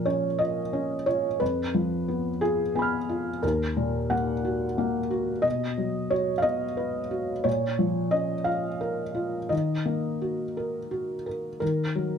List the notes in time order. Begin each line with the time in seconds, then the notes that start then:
Already playing: A#2 F3 A#4
0.05 C#4 C#5
0.39 F4 D#5
0.73 C#4
1.06 F4 C#5
1.40 F2 B4
1.74 F3
2.08 B3
2.41 F4 G#4
2.75 B3 G#5 B5
2.82 F6
3.09 F4
3.43 D#2 A#4
3.77 A#2
4.10 A#3 F#5
4.45 F#4
4.78 A#3
5.11 F#4
5.42 B2 D#5
5.78 F#3
6.10 F#4 C#5
6.38 F5
6.42 B3 D#5
6.77 B4
7.11 F#4
7.44 A#2 C#5
7.79 F3
8.11 C#4 D#5
8.44 F4 F5
8.81 A#4
9.15 F4
9.49 D#3 D#5
9.85 A#3
10.22 F#4
10.57 A#4
10.91 F#4
11.26 A#4
11.60 D#3 A#4
11.95 F#3